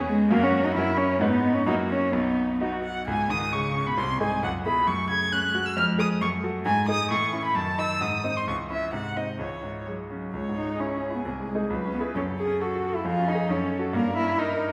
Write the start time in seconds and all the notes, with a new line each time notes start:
Already playing: E2 C#4 G#4 B4
0.08 G#3
0.31 F#2 A#3 C#4 F#4 A#4
0.43 C#4
0.65 D#4
0.75 F#2 C#4 E4 F#4 A#4
0.97 C#4
1.20 G#2 G#3 B3 D#4 B4
1.31 B3
1.55 C#4
1.66 F#2 A#3 D#4 E4 F#4
1.90 C#4
2.12 B1 B3 D#4
2.60 B3 D#4 F#4
2.72 F#4
2.84 F#5
3.07 C#2 G#2 G#5
3.30 G#2 D#3 D#6
3.53 C#3 G#3 C#6
3.75 C#4
3.86 B2 B5
3.98 C2 C3 C6
4.20 G#2 D#4 G#4 G#5
4.42 C#2 F#2 F#5
4.65 B2 E4 G#4 B5
4.87 F#2 A3 C#6
5.09 C#3 G#6
5.32 C#4 F#6
5.55 F#4
5.66 E6
5.76 F2 G#3 F6
5.99 G#4 D#6
6.21 F#2 A3 C#6
6.44 F#4 A4
6.66 G#2 G#3 G#5
6.88 D#4 G#4 D#6
7.11 A2 E3 C#6
7.33 C#4 E4
7.45 B5
7.55 F#2 D#3 A5
7.78 D#4 E6
8.01 G#2 D#6
8.24 C4 D#4
8.37 C6
8.47 C#2 E3 C#6
8.70 C#4 E4 E5
8.93 G#2 C3 F#5
9.16 C4 D#4 D#5
9.39 C#2 E3 C#5
9.63 G#2
9.86 F#3 G#3
10.10 F#3 C#4
10.33 C#2 G#3 C#5
10.49 G#2
10.57 D#4
10.65 G#3
10.80 C#4 E4 G#4
10.95 C#4
11.10 E4
11.15 B3
11.25 C2 C4
11.40 G#3
11.48 G#3
11.55 D#4 G#4
11.70 C#2 F#3 B4
11.86 C#4
11.93 B3
12.00 E4 G#4
12.15 F#2 C#4 A4
12.30 C#3
12.39 G#4
12.46 C#4
12.60 F#4 A4
12.76 F#4
12.90 A4
12.95 E4
13.05 F2 F4 G#4
13.19 C#4
13.28 D#4
13.35 G#4
13.49 F#2 C#4 A4
13.64 C#4
13.79 F#4 A4
13.93 G2 A#3 A#4
14.08 G3
14.17 E4
14.22 C#4
14.38 D#4 A#4
14.52 D#4
14.67 A#4